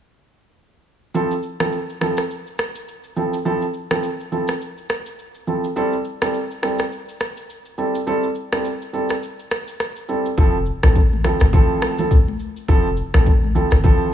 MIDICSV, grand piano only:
0, 0, Header, 1, 2, 480
1, 0, Start_track
1, 0, Tempo, 576923
1, 953, Time_signature, 4, 2, 24, 8
1, 11762, End_track
2, 0, Start_track
2, 0, Title_t, "Grand piano"
2, 0, Program_c, 0, 0
2, 951, Note_on_c, 0, 53, 85
2, 952, Note_on_c, 0, 60, 79
2, 954, Note_on_c, 0, 64, 75
2, 956, Note_on_c, 0, 69, 92
2, 1099, Note_off_c, 0, 53, 0
2, 1100, Note_off_c, 0, 60, 0
2, 1101, Note_off_c, 0, 64, 0
2, 1101, Note_off_c, 0, 69, 0
2, 1330, Note_on_c, 0, 53, 70
2, 1332, Note_on_c, 0, 60, 63
2, 1333, Note_on_c, 0, 64, 64
2, 1335, Note_on_c, 0, 69, 81
2, 1443, Note_off_c, 0, 53, 0
2, 1443, Note_off_c, 0, 60, 0
2, 1444, Note_off_c, 0, 64, 0
2, 1445, Note_off_c, 0, 69, 0
2, 1670, Note_on_c, 0, 53, 73
2, 1672, Note_on_c, 0, 60, 64
2, 1674, Note_on_c, 0, 64, 65
2, 1675, Note_on_c, 0, 69, 81
2, 1819, Note_off_c, 0, 53, 0
2, 1820, Note_off_c, 0, 60, 0
2, 1820, Note_off_c, 0, 64, 0
2, 1821, Note_off_c, 0, 69, 0
2, 2631, Note_on_c, 0, 53, 70
2, 2633, Note_on_c, 0, 60, 68
2, 2634, Note_on_c, 0, 64, 62
2, 2636, Note_on_c, 0, 69, 77
2, 2779, Note_off_c, 0, 53, 0
2, 2780, Note_off_c, 0, 60, 0
2, 2781, Note_off_c, 0, 64, 0
2, 2782, Note_off_c, 0, 69, 0
2, 2871, Note_on_c, 0, 53, 87
2, 2872, Note_on_c, 0, 60, 82
2, 2874, Note_on_c, 0, 64, 83
2, 2876, Note_on_c, 0, 69, 94
2, 3019, Note_off_c, 0, 53, 0
2, 3020, Note_off_c, 0, 60, 0
2, 3021, Note_off_c, 0, 64, 0
2, 3021, Note_off_c, 0, 69, 0
2, 3250, Note_on_c, 0, 53, 73
2, 3252, Note_on_c, 0, 60, 67
2, 3253, Note_on_c, 0, 64, 64
2, 3255, Note_on_c, 0, 69, 79
2, 3363, Note_off_c, 0, 53, 0
2, 3364, Note_off_c, 0, 60, 0
2, 3364, Note_off_c, 0, 64, 0
2, 3365, Note_off_c, 0, 69, 0
2, 3591, Note_on_c, 0, 53, 70
2, 3593, Note_on_c, 0, 60, 64
2, 3595, Note_on_c, 0, 64, 67
2, 3596, Note_on_c, 0, 69, 81
2, 3739, Note_off_c, 0, 53, 0
2, 3740, Note_off_c, 0, 60, 0
2, 3741, Note_off_c, 0, 64, 0
2, 3742, Note_off_c, 0, 69, 0
2, 4552, Note_on_c, 0, 53, 70
2, 4553, Note_on_c, 0, 60, 68
2, 4555, Note_on_c, 0, 64, 63
2, 4557, Note_on_c, 0, 69, 78
2, 4699, Note_off_c, 0, 53, 0
2, 4700, Note_off_c, 0, 60, 0
2, 4701, Note_off_c, 0, 64, 0
2, 4702, Note_off_c, 0, 69, 0
2, 4792, Note_on_c, 0, 55, 90
2, 4793, Note_on_c, 0, 60, 80
2, 4795, Note_on_c, 0, 64, 85
2, 4796, Note_on_c, 0, 69, 98
2, 4939, Note_off_c, 0, 55, 0
2, 4940, Note_off_c, 0, 60, 0
2, 4941, Note_off_c, 0, 64, 0
2, 4942, Note_off_c, 0, 69, 0
2, 5171, Note_on_c, 0, 55, 72
2, 5173, Note_on_c, 0, 60, 66
2, 5174, Note_on_c, 0, 64, 67
2, 5176, Note_on_c, 0, 69, 81
2, 5283, Note_off_c, 0, 55, 0
2, 5284, Note_off_c, 0, 60, 0
2, 5285, Note_off_c, 0, 64, 0
2, 5286, Note_off_c, 0, 69, 0
2, 5511, Note_on_c, 0, 55, 72
2, 5513, Note_on_c, 0, 60, 66
2, 5514, Note_on_c, 0, 64, 69
2, 5516, Note_on_c, 0, 69, 78
2, 5659, Note_off_c, 0, 55, 0
2, 5660, Note_off_c, 0, 60, 0
2, 5661, Note_off_c, 0, 64, 0
2, 5662, Note_off_c, 0, 69, 0
2, 6471, Note_on_c, 0, 55, 74
2, 6472, Note_on_c, 0, 60, 63
2, 6474, Note_on_c, 0, 64, 68
2, 6476, Note_on_c, 0, 69, 78
2, 6619, Note_off_c, 0, 55, 0
2, 6620, Note_off_c, 0, 60, 0
2, 6621, Note_off_c, 0, 64, 0
2, 6621, Note_off_c, 0, 69, 0
2, 6711, Note_on_c, 0, 55, 90
2, 6712, Note_on_c, 0, 60, 80
2, 6714, Note_on_c, 0, 64, 81
2, 6716, Note_on_c, 0, 69, 99
2, 6859, Note_off_c, 0, 55, 0
2, 6860, Note_off_c, 0, 60, 0
2, 6861, Note_off_c, 0, 64, 0
2, 6862, Note_off_c, 0, 69, 0
2, 7089, Note_on_c, 0, 55, 72
2, 7091, Note_on_c, 0, 60, 66
2, 7093, Note_on_c, 0, 64, 69
2, 7095, Note_on_c, 0, 69, 78
2, 7202, Note_off_c, 0, 55, 0
2, 7203, Note_off_c, 0, 60, 0
2, 7204, Note_off_c, 0, 64, 0
2, 7205, Note_off_c, 0, 69, 0
2, 7430, Note_on_c, 0, 55, 75
2, 7432, Note_on_c, 0, 60, 64
2, 7434, Note_on_c, 0, 64, 65
2, 7436, Note_on_c, 0, 69, 83
2, 7579, Note_off_c, 0, 55, 0
2, 7580, Note_off_c, 0, 60, 0
2, 7581, Note_off_c, 0, 64, 0
2, 7581, Note_off_c, 0, 69, 0
2, 8391, Note_on_c, 0, 55, 70
2, 8392, Note_on_c, 0, 60, 65
2, 8394, Note_on_c, 0, 64, 66
2, 8396, Note_on_c, 0, 69, 79
2, 8539, Note_off_c, 0, 55, 0
2, 8540, Note_off_c, 0, 60, 0
2, 8541, Note_off_c, 0, 64, 0
2, 8541, Note_off_c, 0, 69, 0
2, 8631, Note_on_c, 0, 53, 93
2, 8633, Note_on_c, 0, 60, 85
2, 8634, Note_on_c, 0, 64, 85
2, 8636, Note_on_c, 0, 69, 100
2, 8779, Note_off_c, 0, 53, 0
2, 8780, Note_off_c, 0, 60, 0
2, 8781, Note_off_c, 0, 64, 0
2, 8781, Note_off_c, 0, 69, 0
2, 9010, Note_on_c, 0, 53, 76
2, 9012, Note_on_c, 0, 60, 67
2, 9014, Note_on_c, 0, 64, 68
2, 9015, Note_on_c, 0, 69, 88
2, 9123, Note_off_c, 0, 53, 0
2, 9124, Note_off_c, 0, 60, 0
2, 9124, Note_off_c, 0, 64, 0
2, 9125, Note_off_c, 0, 69, 0
2, 9351, Note_on_c, 0, 53, 78
2, 9353, Note_on_c, 0, 60, 67
2, 9355, Note_on_c, 0, 64, 70
2, 9356, Note_on_c, 0, 69, 87
2, 9499, Note_off_c, 0, 53, 0
2, 9500, Note_off_c, 0, 60, 0
2, 9501, Note_off_c, 0, 64, 0
2, 9502, Note_off_c, 0, 69, 0
2, 9591, Note_on_c, 0, 53, 88
2, 9593, Note_on_c, 0, 60, 86
2, 9594, Note_on_c, 0, 64, 85
2, 9596, Note_on_c, 0, 69, 101
2, 9938, Note_off_c, 0, 53, 0
2, 9939, Note_off_c, 0, 60, 0
2, 9940, Note_off_c, 0, 64, 0
2, 9941, Note_off_c, 0, 69, 0
2, 9970, Note_on_c, 0, 53, 77
2, 9972, Note_on_c, 0, 60, 69
2, 9974, Note_on_c, 0, 64, 73
2, 9976, Note_on_c, 0, 69, 87
2, 10083, Note_off_c, 0, 53, 0
2, 10084, Note_off_c, 0, 60, 0
2, 10085, Note_off_c, 0, 64, 0
2, 10085, Note_off_c, 0, 69, 0
2, 10551, Note_on_c, 0, 53, 90
2, 10553, Note_on_c, 0, 60, 85
2, 10555, Note_on_c, 0, 64, 84
2, 10556, Note_on_c, 0, 69, 107
2, 10699, Note_off_c, 0, 53, 0
2, 10700, Note_off_c, 0, 60, 0
2, 10701, Note_off_c, 0, 64, 0
2, 10702, Note_off_c, 0, 69, 0
2, 10931, Note_on_c, 0, 53, 77
2, 10932, Note_on_c, 0, 60, 70
2, 10934, Note_on_c, 0, 64, 74
2, 10936, Note_on_c, 0, 69, 86
2, 11043, Note_off_c, 0, 53, 0
2, 11044, Note_off_c, 0, 60, 0
2, 11044, Note_off_c, 0, 64, 0
2, 11045, Note_off_c, 0, 69, 0
2, 11271, Note_on_c, 0, 53, 76
2, 11273, Note_on_c, 0, 60, 73
2, 11275, Note_on_c, 0, 64, 70
2, 11276, Note_on_c, 0, 69, 85
2, 11419, Note_off_c, 0, 53, 0
2, 11420, Note_off_c, 0, 60, 0
2, 11421, Note_off_c, 0, 64, 0
2, 11422, Note_off_c, 0, 69, 0
2, 11511, Note_on_c, 0, 53, 93
2, 11513, Note_on_c, 0, 60, 85
2, 11514, Note_on_c, 0, 64, 82
2, 11516, Note_on_c, 0, 69, 102
2, 11762, Note_off_c, 0, 53, 0
2, 11762, Note_off_c, 0, 60, 0
2, 11762, Note_off_c, 0, 64, 0
2, 11762, Note_off_c, 0, 69, 0
2, 11762, End_track
0, 0, End_of_file